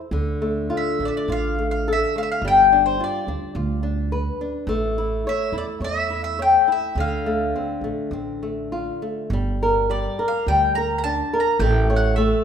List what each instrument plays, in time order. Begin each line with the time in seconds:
0.11 upright bass D2, nylon-string guitar D3
0.42 nylon-string guitar A3
0.70 nylon-string guitar F4
0.77 mandolin E5
0.99 upright bass A1, nylon-string guitar A3
1.05 mandolin D5 E5
1.17 mandolin D5
1.28 upright bass A1, nylon-string guitar F4, mandolin F5
1.59 nylon-string guitar A3
1.71 mandolin F5
1.88 nylon-string guitar A4
1.93 mandolin E5
2.16 nylon-string guitar A3, mandolin F5
2.23 mandolin E5
2.32 mandolin F5
2.42 upright bass G1, nylon-string guitar G3
2.48 mandolin G5
2.72 nylon-string guitar D4
2.86 mandolin C5
3.00 nylon-string guitar F4, mandolin D5
3.27 upright bass D2, nylon-string guitar D4
3.55 upright bass D2, nylon-string guitar F4
3.83 nylon-string guitar D4
4.12 nylon-string guitar B4
4.41 nylon-string guitar D4
4.67 upright bass A1, nylon-string guitar A3
4.98 nylon-string guitar E4
5.27 nylon-string guitar C#5, mandolin E5
5.52 upright bass E2, nylon-string guitar E4
5.58 mandolin D5
5.80 upright bass E2, nylon-string guitar C#5, mandolin E5
6.10 nylon-string guitar E4
6.24 mandolin E5
6.39 nylon-string guitar C#5, mandolin G5
6.68 nylon-string guitar E4
6.72 mandolin E5
6.95 upright bass D2, nylon-string guitar D3
7.00 mandolin F5
7.26 nylon-string guitar A3
7.56 nylon-string guitar C4
7.81 upright bass A1, nylon-string guitar A3
8.11 upright bass A1, nylon-string guitar C4
8.43 nylon-string guitar A3
8.72 nylon-string guitar F4
9.02 nylon-string guitar A3
9.30 upright bass G1, nylon-string guitar G3
9.63 nylon-string guitar A#4
9.90 nylon-string guitar G3, mandolin D5
10.19 nylon-string guitar A#4
10.28 mandolin F5
10.47 upright bass D2, nylon-string guitar G3, mandolin G5
10.75 nylon-string guitar A#4, mandolin A#5
10.98 mandolin A#5
11.04 nylon-string guitar D4, mandolin A5
11.33 nylon-string guitar A#4
11.40 mandolin A#5
11.59 upright bass A1, nylon-string guitar A3, mandolin G5
11.90 nylon-string guitar C#5
11.96 mandolin F#5
12.16 nylon-string guitar A3, mandolin E5